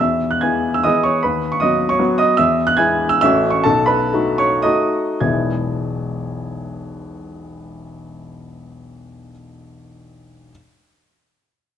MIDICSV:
0, 0, Header, 1, 2, 480
1, 0, Start_track
1, 0, Key_signature, 4, "major"
1, 0, Tempo, 424328
1, 954, Tempo, 383142
1, 1431, Time_signature, 3, 2, 24, 8
1, 2874, Tempo, 423131
1, 4314, Tempo, 478851
1, 4794, Tempo, 530973
1, 5274, Tempo, 561272
1, 6714, Tempo, 542986
1, 8154, Tempo, 500417
1, 11803, End_track
2, 0, Start_track
2, 0, Title_t, "Grand piano"
2, 0, Program_c, 0, 0
2, 0, Control_c, 0, 64, 127
2, 0, Note_on_c, 0, 88, 61
2, 5, Control_c, 0, 64, 0
2, 7, Note_on_c, 0, 76, 48
2, 14, Note_on_c, 0, 40, 45
2, 198, Control_c, 0, 64, 127
2, 334, Note_off_c, 0, 76, 0
2, 346, Note_on_c, 0, 90, 59
2, 350, Note_off_c, 0, 88, 0
2, 464, Note_on_c, 0, 92, 63
2, 474, Note_off_c, 0, 40, 0
2, 475, Note_off_c, 0, 90, 0
2, 475, Note_on_c, 0, 80, 48
2, 485, Note_on_c, 0, 59, 34
2, 489, Note_on_c, 0, 52, 33
2, 499, Note_on_c, 0, 68, 32
2, 814, Note_off_c, 0, 80, 0
2, 834, Note_off_c, 0, 92, 0
2, 841, Note_on_c, 0, 88, 61
2, 913, Note_off_c, 0, 59, 0
2, 914, Note_off_c, 0, 52, 0
2, 920, Note_off_c, 0, 68, 0
2, 945, Note_on_c, 0, 87, 72
2, 954, Note_off_c, 0, 88, 0
2, 955, Note_on_c, 0, 75, 54
2, 960, Note_on_c, 0, 52, 38
2, 968, Control_c, 0, 64, 0
2, 971, Note_on_c, 0, 59, 42
2, 979, Note_on_c, 0, 68, 42
2, 1180, Note_off_c, 0, 75, 0
2, 1191, Note_off_c, 0, 87, 0
2, 1193, Note_on_c, 0, 85, 66
2, 1211, Note_on_c, 0, 73, 51
2, 1387, Note_off_c, 0, 52, 0
2, 1392, Note_off_c, 0, 59, 0
2, 1397, Note_off_c, 0, 68, 0
2, 1422, Note_off_c, 0, 73, 0
2, 1429, Note_off_c, 0, 85, 0
2, 1435, Note_on_c, 0, 83, 56
2, 1451, Note_on_c, 0, 71, 44
2, 1464, Note_on_c, 0, 39, 42
2, 1646, Control_c, 0, 64, 127
2, 1776, Note_off_c, 0, 71, 0
2, 1792, Note_off_c, 0, 83, 0
2, 1798, Note_on_c, 0, 85, 66
2, 1902, Note_on_c, 0, 87, 64
2, 1918, Note_off_c, 0, 39, 0
2, 1919, Note_off_c, 0, 85, 0
2, 1924, Note_on_c, 0, 75, 56
2, 1932, Note_on_c, 0, 54, 37
2, 1936, Note_on_c, 0, 66, 40
2, 1941, Note_on_c, 0, 59, 36
2, 2259, Note_off_c, 0, 75, 0
2, 2267, Note_on_c, 0, 85, 70
2, 2274, Note_off_c, 0, 87, 0
2, 2280, Note_on_c, 0, 73, 46
2, 2359, Note_off_c, 0, 54, 0
2, 2361, Note_off_c, 0, 66, 0
2, 2363, Note_off_c, 0, 59, 0
2, 2389, Note_on_c, 0, 54, 53
2, 2394, Note_on_c, 0, 66, 53
2, 2399, Note_on_c, 0, 59, 43
2, 2410, Control_c, 0, 64, 0
2, 2609, Note_off_c, 0, 73, 0
2, 2627, Note_off_c, 0, 85, 0
2, 2629, Note_on_c, 0, 87, 74
2, 2637, Note_on_c, 0, 75, 57
2, 2822, Note_off_c, 0, 54, 0
2, 2824, Note_off_c, 0, 66, 0
2, 2827, Note_off_c, 0, 59, 0
2, 2859, Note_off_c, 0, 75, 0
2, 2868, Note_on_c, 0, 88, 79
2, 2872, Note_off_c, 0, 87, 0
2, 2876, Note_on_c, 0, 76, 60
2, 2888, Note_on_c, 0, 40, 49
2, 3102, Control_c, 0, 64, 127
2, 3196, Note_off_c, 0, 76, 0
2, 3205, Note_on_c, 0, 90, 77
2, 3217, Note_off_c, 0, 88, 0
2, 3318, Note_on_c, 0, 92, 78
2, 3328, Note_on_c, 0, 80, 60
2, 3334, Note_off_c, 0, 90, 0
2, 3335, Note_off_c, 0, 40, 0
2, 3335, Note_on_c, 0, 56, 37
2, 3339, Note_on_c, 0, 64, 45
2, 3341, Note_on_c, 0, 59, 37
2, 3675, Note_off_c, 0, 80, 0
2, 3688, Note_on_c, 0, 88, 80
2, 3696, Note_off_c, 0, 92, 0
2, 3780, Note_off_c, 0, 56, 0
2, 3782, Note_off_c, 0, 64, 0
2, 3783, Note_off_c, 0, 59, 0
2, 3806, Note_off_c, 0, 88, 0
2, 3823, Note_on_c, 0, 88, 91
2, 3836, Note_on_c, 0, 76, 68
2, 3839, Control_c, 0, 64, 0
2, 3846, Note_on_c, 0, 33, 60
2, 3848, Note_on_c, 0, 61, 43
2, 3849, Note_on_c, 0, 57, 44
2, 3857, Note_on_c, 0, 66, 45
2, 4057, Control_c, 0, 64, 127
2, 4155, Note_on_c, 0, 85, 71
2, 4169, Note_off_c, 0, 76, 0
2, 4187, Note_off_c, 0, 88, 0
2, 4277, Note_off_c, 0, 61, 0
2, 4278, Note_off_c, 0, 57, 0
2, 4282, Note_off_c, 0, 66, 0
2, 4296, Note_off_c, 0, 85, 0
2, 4303, Note_on_c, 0, 81, 79
2, 4308, Note_off_c, 0, 33, 0
2, 4320, Note_on_c, 0, 69, 56
2, 4326, Note_on_c, 0, 35, 53
2, 4329, Control_c, 0, 64, 0
2, 4525, Control_c, 0, 64, 127
2, 4528, Note_on_c, 0, 83, 74
2, 4531, Note_off_c, 0, 69, 0
2, 4539, Note_off_c, 0, 81, 0
2, 4542, Note_on_c, 0, 71, 58
2, 4786, Note_off_c, 0, 35, 0
2, 4804, Note_on_c, 0, 57, 41
2, 4806, Note_on_c, 0, 66, 44
2, 4807, Note_on_c, 0, 63, 40
2, 4997, Note_off_c, 0, 71, 0
2, 5023, Note_off_c, 0, 83, 0
2, 5028, Note_on_c, 0, 85, 80
2, 5038, Note_on_c, 0, 73, 58
2, 5242, Note_off_c, 0, 57, 0
2, 5243, Note_off_c, 0, 66, 0
2, 5244, Note_off_c, 0, 63, 0
2, 5246, Note_on_c, 0, 87, 69
2, 5252, Note_on_c, 0, 75, 56
2, 5261, Note_off_c, 0, 73, 0
2, 5263, Note_on_c, 0, 57, 49
2, 5264, Note_on_c, 0, 66, 46
2, 5265, Note_on_c, 0, 63, 47
2, 5272, Note_off_c, 0, 85, 0
2, 5283, Control_c, 0, 64, 0
2, 5721, Note_off_c, 0, 75, 0
2, 5726, Note_off_c, 0, 57, 0
2, 5726, Note_off_c, 0, 66, 0
2, 5727, Note_off_c, 0, 63, 0
2, 5744, Note_on_c, 0, 92, 47
2, 5749, Note_on_c, 0, 35, 37
2, 5751, Note_on_c, 0, 28, 43
2, 5752, Note_off_c, 0, 87, 0
2, 5755, Note_on_c, 0, 59, 36
2, 5757, Note_on_c, 0, 52, 33
2, 5757, Note_on_c, 0, 64, 34
2, 5758, Note_on_c, 0, 56, 32
2, 5982, Control_c, 0, 64, 127
2, 9430, Note_off_c, 0, 92, 0
2, 9435, Note_off_c, 0, 35, 0
2, 9438, Note_off_c, 0, 28, 0
2, 9442, Note_off_c, 0, 59, 0
2, 9444, Note_off_c, 0, 52, 0
2, 9445, Note_off_c, 0, 64, 0
2, 9446, Note_off_c, 0, 56, 0
2, 10594, Control_c, 0, 64, 0
2, 11803, End_track
0, 0, End_of_file